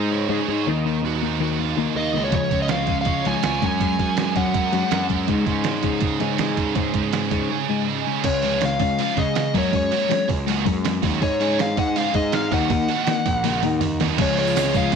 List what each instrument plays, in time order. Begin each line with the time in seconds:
Already playing: picked electric bass G#2, overdriven electric guitar G#3 D#4, clean electric guitar G#4
0.11 clean electric guitar G#3 D#4, overdriven electric guitar C#5
0.29 picked electric bass G#2, clean electric guitar G#3 D#4 G#4, overdriven electric guitar G#4
0.48 picked electric bass G#2, clean electric guitar G#3 D#4, overdriven electric guitar C#5
0.67 picked electric bass D#2, clean electric guitar D#3 A#3 D#4, overdriven electric guitar D#3
0.85 clean electric guitar D#3 A#3 D#4, overdriven electric guitar D#3
1.03 picked electric bass D#2, clean electric guitar D#3 A#3, overdriven electric guitar F#4
1.23 clean electric guitar D#3 A#3, overdriven electric guitar D#4
1.40 clean electric guitar D#3 A#3 D#4, overdriven electric guitar F#4
1.59 clean electric guitar D#3 A#3, overdriven electric guitar F5
1.77 picked electric bass D#2, clean electric guitar D#3 A#3 D#4, overdriven electric guitar A#4
1.95 picked electric bass D#2, clean electric guitar D#3 A#3, lead electric guitar D#5, overdriven electric guitar F5
2.14 picked electric bass C#2, clean electric guitar D#3 A#3, overdriven electric guitar F#4
2.25 lead electric guitar C#5
2.31 picked electric bass C#2, clean electric guitar C#3 F3 G#3, overdriven electric guitar C#3, kick, closed hi-hat
2.35 lead electric guitar C#5
2.51 picked electric bass C#2, clean electric guitar C#3 F3, overdriven electric guitar C#4, kick, closed hi-hat
2.62 lead electric guitar D#5
2.68 clean electric guitar C#3 F3, overdriven electric guitar G#3, lead electric guitar F5, snare, closed hi-hat
2.87 clean electric guitar C#3 F3 G#3, overdriven electric guitar C#4, kick, closed hi-hat
3.01 lead electric guitar F5, closed hi-hat
3.06 clean electric guitar C#3 F3, overdriven electric guitar C#5, kick
3.25 picked electric bass C#2, clean electric guitar C#3 F3 G#3, overdriven electric guitar F4, lead electric guitar G#5, snare, closed hi-hat
3.43 picked electric bass C#2, clean electric guitar C#3 F3, overdriven electric guitar C#5, snare, closed hi-hat
3.62 picked electric bass F#2, clean electric guitar F#3 G#3 C#4, overdriven electric guitar F#3, kick, closed hi-hat
3.66 lead electric guitar G#5
3.81 clean electric guitar F#3 G#3 C#4, overdriven electric guitar F#3, kick, closed hi-hat
3.99 picked electric bass F#2, clean electric guitar F#3 G#3, overdriven electric guitar C#4, kick, closed hi-hat
4.17 clean electric guitar F#3 G#3, overdriven electric guitar G#3, snare, closed hi-hat
4.36 clean electric guitar F#3 G#3 C#4, overdriven electric guitar C#4, lead electric guitar F#5, kick, closed hi-hat
4.54 clean electric guitar F#3 G#3, overdriven electric guitar A#4, kick, closed hi-hat
4.72 picked electric bass F#2, clean electric guitar F#3 G#3 C#4, overdriven electric guitar F#4, closed hi-hat
4.91 picked electric bass F#2, clean electric guitar F#3 G#3, overdriven electric guitar A#4, snare, closed hi-hat
5.10 clean electric guitar F#3 G#3, overdriven electric guitar C#4, kick, closed hi-hat
5.27 clean electric guitar G#2 C#3 G#3, picked electric bass G#2, overdriven electric guitar G#2, kick, closed hi-hat
5.46 clean electric guitar G#2 C#3, picked electric bass G#2, overdriven electric guitar C#4, kick, closed hi-hat
5.64 clean electric guitar G#2 C#3, overdriven electric guitar G#3, snare, closed hi-hat
5.82 clean electric guitar G#2 C#3 G#3, overdriven electric guitar C#4, kick, closed hi-hat
6.01 clean electric guitar G#2 C#3, overdriven electric guitar G#4, kick, closed hi-hat
6.20 clean electric guitar G#2 C#3 G#3, picked electric bass G#2, overdriven electric guitar D#4, snare, closed hi-hat
6.38 clean electric guitar G#2 C#3, picked electric bass G#2, overdriven electric guitar G#4, snare, closed hi-hat
6.57 clean electric guitar G#2 C#3, overdriven electric guitar C#4, kick, closed hi-hat
6.75 picked electric bass G#2, clean electric guitar G#2 C#3 G#3, overdriven electric guitar G#2, kick, closed hi-hat
6.94 picked electric bass G#2, clean electric guitar G#2 C#3, overdriven electric guitar C#4, kick, closed hi-hat
7.13 clean electric guitar G#2 C#3, overdriven electric guitar G#3, snare, closed hi-hat
7.31 clean electric guitar G#2 C#3 G#3, overdriven electric guitar C#4, kick, closed hi-hat
7.50 clean electric guitar G#2 C#3, overdriven electric guitar G#4
7.69 clean electric guitar G#2 C#3 G#3, overdriven electric guitar D#4
7.87 clean electric guitar G#2 C#3, overdriven electric guitar G#4
8.07 clean electric guitar G#2 C#3, overdriven electric guitar C#4
8.24 picked electric bass C#2, clean electric guitar C#3 G#3 C#4, lead electric guitar C#5, muted overdriven electric guitar stroke, kick, open hi-hat, crash
8.43 clean electric guitar C#3 G#3, overdriven electric guitar F3 G#3 C#4 F4, open hi-hat
8.61 clean electric guitar C#3 G#3, muted overdriven electric guitar stroke, snare, open hi-hat
8.65 lead electric guitar F5
8.80 picked electric bass C#2, clean electric guitar C#3 G#3 C#4, muted overdriven electric guitar stroke, kick, open hi-hat
8.99 clean electric guitar C#3 G#3, overdriven electric guitar F3 G#3 C#4 F4, lead electric guitar F5, open hi-hat
9.17 clean electric guitar C#3 G#3 C#4, picked electric bass C#3, lead electric guitar D#5, muted overdriven electric guitar stroke, kick, open hi-hat
9.35 clean electric guitar C#3 G#3, muted overdriven electric guitar stroke, snare, open hi-hat
9.54 picked electric bass F#2, clean electric guitar F#3 G#3 C#4, overdriven electric guitar F#3 A#3 C#4 F#4, kick, open hi-hat
9.58 lead electric guitar C#5
9.72 picked electric bass F#2, clean electric guitar F#3 G#3 C#4, muted overdriven electric guitar stroke, kick, open hi-hat
9.77 lead electric guitar C#5
9.91 clean electric guitar F#3 G#3, overdriven electric guitar F#3 A#3 C#4 F#4, open hi-hat
10.09 clean electric guitar F#3 G#3 C#4, muted overdriven electric guitar stroke, snare, open hi-hat
10.28 picked electric bass C#2, clean electric guitar F#3 G#3, muted overdriven electric guitar stroke, kick, open hi-hat
10.47 overdriven electric guitar F#3 A#3 C#4 F#4, clean electric guitar F#3 G#3, open hi-hat
10.65 picked electric bass F#2, clean electric guitar F#3 G#3 C#4, muted overdriven electric guitar stroke, kick, open hi-hat
10.84 clean electric guitar F#3 G#3, muted overdriven electric guitar stroke, snare, open hi-hat
11.02 picked electric bass D#2, clean electric guitar F#3 G#3, overdriven electric guitar F#3 A#3 C#4 F#4, kick, open hi-hat
11.21 picked electric bass G#2, clean electric guitar G#3 D#4 G#4, lead electric guitar C#5, muted overdriven electric guitar stroke, kick, open hi-hat
11.40 clean electric guitar G#3 D#4, overdriven electric guitar G#3 C#4 D#4 G#4, open hi-hat
11.59 clean electric guitar G#3 D#4, lead electric guitar F5, muted overdriven electric guitar stroke, snare, open hi-hat
11.77 picked electric bass G#2, clean electric guitar G#3 D#4 G#4, lead electric guitar F#5, muted overdriven electric guitar stroke, kick, open hi-hat
11.96 overdriven electric guitar G#3 C#4 D#4 G#4, clean electric guitar G#3 D#4, lead electric guitar F5, open hi-hat
12.14 picked electric bass G#2, clean electric guitar G#3 D#4 G#4, lead electric guitar D#5, muted overdriven electric guitar stroke, kick, open hi-hat
12.32 clean electric guitar G#3 D#4, lead electric guitar F5, muted overdriven electric guitar stroke, snare, open hi-hat
12.51 picked electric bass D#2, clean electric guitar D#3 A#3 D#4, overdriven electric guitar D#3 A#3 D#4 F#4, lead electric guitar F#5, kick, open hi-hat
12.70 picked electric bass D#2, clean electric guitar D#3 A#3 D#4, muted overdriven electric guitar stroke, kick, open hi-hat
12.89 clean electric guitar D#3, overdriven electric guitar D#3 A#3 D#4 F#4, open hi-hat
13.07 clean electric guitar D#3 A#3 D#4, muted overdriven electric guitar stroke, snare, open hi-hat
13.26 picked electric bass A#1, muted overdriven electric guitar stroke, kick, open hi-hat
13.44 overdriven electric guitar D#3 A#3 D#4 F#4, clean electric guitar D#3 A#3, open hi-hat, high tom
13.63 picked electric bass D#2, clean electric guitar D#3 A#3 D#4, muted overdriven electric guitar stroke, open hi-hat, mid tom
13.81 clean electric guitar D#3 A#3, muted overdriven electric guitar stroke, mid tom, open hi-hat
14.00 picked electric bass D#2, clean electric guitar D#3 A#3, overdriven electric guitar D#3 A#3 D#4 F#4, snare, open hi-hat
14.18 picked electric bass C#2, clean electric guitar C#3 F3 G#3 C#4 F4, overdriven electric guitar C#3 F3 G#3 C#4 F4, kick, open hi-hat, crash
14.22 clean electric guitar C#5, lead electric guitar C#5
14.36 overdriven electric guitar G#3 C#4 F4, clean electric guitar G#3 C#4 F4 C#5, lead electric guitar C#5, open hi-hat
14.47 tambourine
14.54 overdriven electric guitar F3 G#3 C#4, clean electric guitar G#3 C#4 F4 C#5, snare, open hi-hat, tambourine
14.58 overdriven electric guitar F4
14.73 picked electric bass C#2, clean electric guitar C#3 F3 G#3 C#4 F4 C#5, overdriven electric guitar C#3 F3 G#3 C#4 F4, lead electric guitar F5, kick, open hi-hat, tambourine
14.92 overdriven electric guitar F3, clean electric guitar G#3, open hi-hat